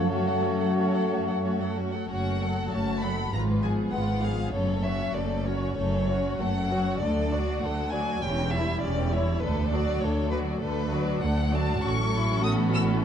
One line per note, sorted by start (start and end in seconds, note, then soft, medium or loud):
0.00 0.39 F#2 medium
0.00 1.85 F#2 soft
0.00 1.73 A4 soft
0.09 1.73 F#3 soft
0.09 1.74 F#3 soft
0.09 1.73 A3 soft
0.09 0.25 A3 soft
0.09 1.73 C#4 soft
0.09 0.25 C#4 soft
0.09 0.25 F#4 soft
0.09 1.73 C#5 soft
0.09 0.25 C#5 soft
0.09 1.77 F#5 soft
0.27 0.43 F#3 soft
0.27 0.42 A3 soft
0.27 0.43 A4 soft
0.27 0.43 F#5 soft
0.43 0.59 A3 soft
0.43 0.60 C#4 soft
0.43 0.59 F#4 soft
0.43 0.60 C#5 soft
0.60 0.76 F#3 soft
0.60 0.76 A3 soft
0.60 0.76 A4 soft
0.60 0.76 F#5 soft
0.76 0.92 A3 soft
0.76 0.92 C#4 soft
0.76 0.92 F#4 soft
0.76 0.92 C#5 soft
0.93 1.09 F#3 soft
0.93 1.08 A3 soft
0.93 1.10 A4 soft
0.93 1.10 F#5 soft
1.09 1.25 A3 soft
1.09 1.26 C#4 soft
1.09 1.26 F#4 soft
1.09 1.26 C#5 soft
1.26 1.43 F#3 soft
1.26 1.41 A3 soft
1.26 1.43 A4 soft
1.26 1.43 F#5 soft
1.43 1.58 A3 soft
1.43 1.58 C#4 soft
1.43 1.59 F#4 soft
1.43 1.59 C#5 soft
1.59 1.76 F#3 soft
1.59 1.75 A3 soft
1.59 1.77 A4 soft
1.59 1.77 F#5 soft
1.76 1.92 A3 soft
1.76 1.93 C#4 soft
1.76 1.93 F#4 soft
1.76 1.93 C#5 soft
1.93 2.09 F#3 soft
1.93 2.08 A3 soft
1.93 2.09 A4 soft
1.93 2.09 F#5 soft
2.09 2.64 F#1 soft
2.09 2.65 F#2 soft
2.09 2.38 A3 soft
2.09 2.38 C#4 soft
2.09 2.39 F#4 soft
2.09 2.39 C#5 soft
2.09 2.68 F#5 medium
2.40 2.71 F#3 soft
2.40 2.70 A3 soft
2.40 2.72 A4 soft
2.40 2.72 F#5 soft
2.71 3.25 F#1 soft
2.71 3.25 F#2 soft
2.71 3.00 A3 soft
2.71 3.02 C#4 soft
2.71 3.02 F#4 soft
2.71 3.02 C#5 soft
2.71 3.01 A5 medium
3.01 3.32 F#3 soft
3.01 3.32 A3 soft
3.01 3.33 A4 soft
3.01 3.33 F#5 soft
3.01 3.33 B5 medium
3.31 3.86 G#1 soft
3.31 3.86 G#2 soft
3.31 3.60 G#3 soft
3.31 3.61 F4 soft
3.31 3.61 B4 soft
3.31 3.41 A#5 medium
3.62 3.93 F3 soft
3.62 3.93 B3 soft
3.62 3.93 G#4 soft
3.62 3.72 G#5 soft
3.92 4.47 G#1 soft
3.92 4.47 G#2 soft
3.92 4.23 G#3 soft
3.92 4.24 F4 soft
3.92 4.24 B4 soft
3.92 4.23 F#5 medium
4.23 4.54 F3 soft
4.23 4.54 B3 soft
4.23 4.54 G#4 soft
4.23 4.54 F5 medium
4.54 5.08 F#1 soft
4.54 5.08 F#2 soft
4.54 4.82 A3 soft
4.54 4.83 C#4 soft
4.54 4.83 A4 soft
4.54 4.84 C#5 medium
4.84 5.15 F#3 soft
4.84 5.15 C#4 soft
4.84 5.15 F#4 soft
4.84 5.15 C#5 soft
4.84 5.16 E5 medium
5.15 5.69 F#1 soft
5.15 5.70 F#2 soft
5.15 5.46 A3 soft
5.15 5.46 C#4 soft
5.15 5.46 A4 soft
5.15 5.47 D5 soft
5.46 5.77 F#3 soft
5.46 5.77 C#4 soft
5.46 5.77 F#4 soft
5.46 5.77 C#5 soft
5.46 5.77 C#5 medium
5.76 6.33 F#1 medium
5.76 6.33 F#2 medium
5.76 6.06 A3 soft
5.76 6.06 C#4 soft
5.76 6.06 A4 soft
5.76 6.40 C#5 medium
6.08 6.40 F#3 soft
6.08 6.40 C#4 soft
6.08 6.41 F#4 soft
6.08 6.41 C#5 soft
6.40 6.94 F#1 soft
6.40 6.95 F#2 medium
6.40 6.71 A3 soft
6.40 6.72 C#4 soft
6.40 6.71 A4 soft
6.40 7.01 F#5 medium
6.71 7.01 F#3 soft
6.71 7.01 C#4 soft
6.71 7.02 F#4 soft
6.71 7.02 C#5 soft
7.01 7.55 D2 soft
7.01 7.30 D3 soft
7.01 7.30 A3 soft
7.01 7.30 D4 soft
7.01 7.30 A4 soft
7.01 7.62 D5 medium
7.32 7.63 F#3 soft
7.32 7.62 D4 soft
7.32 7.63 F#4 soft
7.32 7.62 D5 soft
7.62 8.16 D2 soft
7.62 7.93 D3 soft
7.62 7.93 A3 soft
7.62 7.93 D4 soft
7.62 7.93 A4 soft
7.62 7.93 F#5 medium
7.92 8.23 F#3 soft
7.92 8.23 D4 soft
7.92 8.23 F#4 soft
7.92 8.23 D5 soft
7.92 8.24 G#5 medium
8.23 8.76 E1 medium
8.23 8.76 E2 medium
8.23 8.51 E3 soft
8.23 8.51 C#4 soft
8.23 8.51 G4 soft
8.23 8.54 G5 medium
8.53 8.83 G3 soft
8.53 8.83 E4 soft
8.53 8.83 E5 medium
8.83 9.36 E1 medium
8.83 9.36 E2 medium
8.83 9.13 E3 soft
8.83 9.13 C#4 soft
8.83 9.13 G4 soft
8.83 9.13 D5 medium
9.12 9.42 G3 soft
9.12 9.42 E4 soft
9.12 9.43 E4 soft
9.12 9.43 C#5 medium
9.42 9.95 D2 medium
9.42 9.95 D2 soft
9.42 9.70 D3 soft
9.42 9.70 A3 soft
9.42 9.71 D4 soft
9.42 9.71 A4 soft
9.42 9.72 B4 medium
9.72 10.02 F#3 soft
9.72 10.02 D4 soft
9.72 10.03 F#4 soft
9.72 10.01 D5 medium
9.72 10.03 D5 soft
10.02 10.55 D2 medium
10.02 10.55 D2 soft
10.02 10.32 D3 soft
10.02 10.32 A3 soft
10.02 10.32 D4 soft
10.02 10.32 A4 soft
10.02 10.32 C#5 medium
10.31 10.62 F#3 soft
10.31 10.62 D4 soft
10.31 10.62 F#4 soft
10.31 10.40 B4 medium
10.31 10.62 D5 soft
10.62 11.15 D2 medium
10.62 10.90 D3 soft
10.62 10.90 A3 soft
10.62 10.90 D4 soft
10.62 10.90 A4 soft
10.62 11.21 B4 medium
10.92 11.22 F#3 soft
10.92 11.22 D4 soft
10.92 11.23 F#4 soft
10.92 11.23 D5 soft
11.22 11.76 D2 medium
11.22 11.53 D3 soft
11.22 11.53 A3 soft
11.22 11.53 D4 soft
11.22 11.53 A4 soft
11.22 11.53 F#5 medium
11.52 11.82 F#3 soft
11.52 11.83 D4 soft
11.52 11.83 F#4 soft
11.52 11.84 D5 soft
11.52 11.83 A5 medium
11.83 13.05 A1 medium
11.83 13.05 A2 medium
11.83 12.39 F#3 soft
11.83 13.05 C#4 medium
11.83 11.92 F#4 medium
11.83 13.01 A4 medium
11.83 12.44 C#6 medium
12.14 12.43 E4 medium
12.43 13.04 B3 medium
12.43 13.03 F#4 medium
12.43 12.52 D#6 medium
12.74 12.82 E6 medium